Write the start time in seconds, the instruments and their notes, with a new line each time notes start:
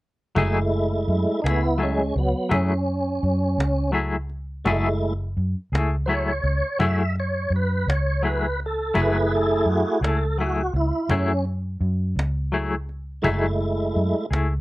0.36 fingered electric bass F#1, clean electric guitar F#3 A3 E4 G#4, tonewheel organ G#3 A3 E4, cajon bass
0.73 cajon slap
1.08 fingered electric bass F#2, cajon slap
1.42 fingered electric bass C#2, tonewheel organ B3 D#4, clean electric guitar E4 G#4
1.46 clean electric guitar A3, tonewheel organ E4, cajon slap
1.78 clean electric guitar F#3 A3 E4 G#4, cajon slap
1.82 tonewheel organ G#3 C#4
2.16 fingered electric bass C#2, tonewheel organ F#3 B3, cajon slap
2.49 fingered electric bass F#2, clean electric guitar F#3 A3 E4 G#4, tonewheel organ C#4, cajon bass, cajon slap
2.88 cajon slap
3.23 fingered electric bass F#2, cajon slap
3.58 fingered electric bass C#2, cajon slap
3.92 clean electric guitar F#3 A3 E4 G#4, cajon slap
4.29 cajon slap
4.64 fingered electric bass F#1, clean electric guitar F#3 A3 E4 G#4, tonewheel organ G#3 A3 E4, cajon bass
5.02 cajon slap
5.36 fingered electric bass F#2, cajon slap
5.72 fingered electric bass C#2, clean electric guitar A3 E4 G#4, cajon slap
6.06 clean electric guitar F#3 A3 E4, tonewheel organ C5 C#5, cajon slap
6.10 clean electric guitar G#4
6.43 fingered electric bass C#2, cajon slap
6.79 fingered electric bass F#2, clean electric guitar F#3 A3 E4 G#4, tonewheel organ E5, cajon bass
7.16 tonewheel organ C#5, cajon slap
7.50 fingered electric bass F#2, cajon slap
7.56 tonewheel organ B4
7.87 fingered electric bass C#2, tonewheel organ C#5, cajon slap
8.23 clean electric guitar F#3 A3 E4 G#4, cajon slap
8.27 tonewheel organ B4
8.60 cajon slap
8.66 tonewheel organ A4
8.94 fingered electric bass F#1, clean electric guitar F#3 A3 E4 G#4, tonewheel organ G#4, cajon bass
8.98 tonewheel organ A3 E4 B4
9.32 tonewheel organ A4, cajon slap
9.65 fingered electric bass F#2, tonewheel organ F#4, cajon slap
10.01 fingered electric bass C#2, clean electric guitar A3 E4 G#4, tonewheel organ A4, cajon slap
10.38 clean electric guitar F#3 A3 E4 G#4, tonewheel organ F#4, cajon slap
10.74 fingered electric bass C#2, tonewheel organ E4, cajon slap
11.09 fingered electric bass F#2, clean electric guitar F#3 A3 E4 G#4, tonewheel organ C#4, cajon bass, cajon slap
11.45 cajon slap
11.81 fingered electric bass F#2, cajon slap
12.16 fingered electric bass C#2, cajon slap
12.52 clean electric guitar F#3 A3 E4 G#4, cajon slap
12.89 cajon slap
13.22 fingered electric bass F#1, clean electric guitar F#3 A3 E4 G#4, tonewheel organ G#3 A3 E4, cajon bass
13.61 cajon slap
13.96 fingered electric bass F#2, cajon slap
13.98 cajon slap
14.31 fingered electric bass C#2, clean electric guitar A3 E4 G#4, cajon slap